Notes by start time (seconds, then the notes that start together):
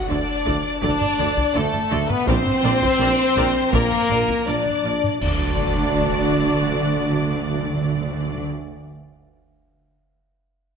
Already playing: D3, impact
0.08 D2 D3 D4 A4 D5
0.46 D2 D3 A4 D5, taiko
0.82 D2 D3 D4 A4 D5, taiko
1.01 taiko low-mid
1.19 D2 D3 A4 D5, taiko low-mid
1.37 taiko
1.54 D2 D3 A3 A4 D5
1.73 taiko low-mid
1.91 D2 D3 A4 D5
2.09 B3 B4, taiko low-mid
2.26 A#1 A#2 C4 A#4 C5 D5, taiko
2.46 taiko low-mid
2.63 A#1 A#2 A#4 D5
2.82 taiko
2.99 A#1 A#2 A#4 D5
3.35 A#1 A#2 A#4 D5, taiko
3.72 A#1 A#2 A#3 A#4 D5, taiko
3.92 taiko low-mid
4.09 A#1 A#2 A#4 D5, taiko low-mid
4.28 taiko
4.46 A#1 A#2 D4 A#4 D5
4.66 taiko low-mid
4.83 A#1 A#2 A#4 D5
5.04 taiko low-mid
5.20 D2 D3 D4 F#4 D5, concert bass drum, crash, sub drop
5.28 D3
5.35 D3
5.41 D3
5.48 D3
5.55 D3
5.61 D3
5.67 D3
5.74 D3
5.81 D3
5.88 D3
5.96 D3
6.02 D3
6.09 D3
6.16 D3
6.23 D3
6.30 D3
6.37 D3
6.44 D3
6.51 D3
6.58 D3
6.65 D3
6.72 D3
6.79 D3
6.86 D3
6.93 D3
7.00 D3
7.06 D3
7.13 D3
7.19 D3
7.27 D3
7.34 D3
7.41 D3
7.48 D3
7.54 D3
7.61 D3
7.67 D3
7.74 D3
7.81 D3
7.88 D3
7.94 D3
8.01 D3
8.08 D3
8.14 D3
8.21 D3
8.28 D3
8.34 D3